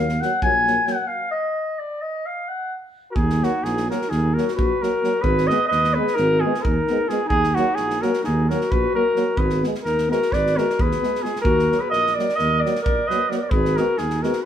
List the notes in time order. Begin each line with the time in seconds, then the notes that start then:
Already playing: D#2 F5
0.09 snare
0.20 F#3 A#3 F#5, snare
0.42 A#1 F#3 A#3 G#5, kick
0.65 F#3 A#3, snare
0.86 F#3 A#3 F#5, snare
1.07 F5
1.31 D#5
1.79 D5
2.02 D#5
2.26 F5
2.48 F#5
3.11 F#4 A#4
3.15 D#2 D#4 G#4, kick
3.30 snare
3.41 F#3 A#3 D#4 F#4, snare
3.62 A#1 D#4 G#4, snare
3.77 snare
3.88 F#3 A#3 F#4 A#4, snare
4.02 snare
4.08 D#2 D#4 G#4, snare
4.34 F#3 A#3 F#4 A#4
4.38 snare
4.48 snare
4.55 A#1 F#4 B4, kick
4.80 F#3 A#3 F#4 A#4, snare
5.04 F#3 A#3, snare
5.21 G#1 G#4 B4, kick
5.38 snare
5.47 G#3 B3 B4 D#5, snare
5.67 B4 D#5
5.71 D#2, snare
5.84 snare
5.94 G#3 B3 G#4 B4
6.07 snare
6.14 D#4 A#4, snare
6.19 G#1
6.40 G#4
6.45 G#3 B3 F4
6.54 snare
6.59 G#4 A#4 B4
6.64 D#2 D#4, kick
6.88 G#3 B3, snare
7.08 G#3 B3 F4 G#4, snare
7.25 D#4 G#4
7.30 D#2, kick
7.44 snare
7.54 F#3 A#3 D#4 F#4, snare
7.75 A#1 D#4 G#4, snare
7.90 snare
8.01 F#3 A#3 F#4 A#4, snare
8.13 snare
8.23 D#2 D#4 G#4, snare
8.48 F#3 A#3 F#4 A#4, snare
8.61 snare
8.70 A#1 F#4 B4, kick
8.94 F#3 A#3 F#4 A#4
9.16 F#3 A#3, snare
9.37 G#1 G#4 B4, kick
9.50 snare
9.62 G#3 B3, snare
9.75 snare
9.83 D#2 D#4 A#4, snare
9.98 snare
10.07 G#3 B3 F#4 A#4
10.12 snare
10.22 snare
10.32 G#1 B4 D5, kick, snare
10.47 snare
10.55 G#3 B3 F#4 A#4, snare
10.70 snare
10.79 D#2 G#4 B4, kick
10.92 snare
11.00 G#3 B3, snare
11.15 snare
11.21 G#3 B3 F4 G#4
11.25 snare
11.36 snare
11.41 D#2 F#4 A#4
11.45 kick
11.59 snare
11.69 F#3 A#3, snare
11.78 G#4 B4
11.90 A#1 A#4 D#5, snare
12.07 snare
12.15 F#3 A#3 A#4 D5
12.19 snare
12.29 snare
12.36 D#2 A#4 D#5, snare
12.60 A#4 D5
12.65 F#3 A#3, snare
12.76 snare
12.82 A#4 D5
12.86 A#1, kick
13.07 F#3 B4 D#5, snare
13.13 A#3
13.28 F#3 A#3 A#4 D5, snare
13.37 A#4 D5
13.50 G#1 G#4 B4, kick
13.65 snare
13.76 G#3 B3 F#4 A#4, snare
13.97 D#2 D#4 G#4, snare
14.10 snare
14.22 G#3 B3 F#4 A#4, snare
14.33 snare